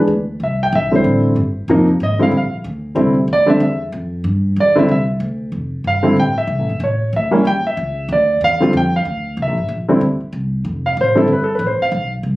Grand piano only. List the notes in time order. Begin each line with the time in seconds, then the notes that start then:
0.43 E5
0.63 G5
0.75 E5
0.91 D3 G3 C4 E4
0.95 C5
1.69 C3 F3 A#3 D#4
2.03 D#5
2.19 D3 G3 C4 E4 F5
2.37 F5
2.95 D3 G3 C4 E4
3.33 D5
3.46 D3 G3 C4 D4 E5
3.63 E5
4.60 D5
4.75 D3 G3 C4 E4 E5
4.91 E5
5.87 F5
6.03 D3 G3 C4 E4
6.20 G5
6.38 E5
6.84 C#5
7.16 E5
7.31 G3 A#3 C#4 E4
7.47 G5
7.67 E5
8.12 D5
8.44 F5
8.60 D3 G3 C4 F4
8.77 G5
8.96 F5
9.42 E5
9.88 D3 G3 C4 E4
10.86 F5
11.01 C5
11.15 D3 G3 C4 E4 A4
11.33 B4
11.44 A4
11.55 B4
11.67 C5
11.82 F5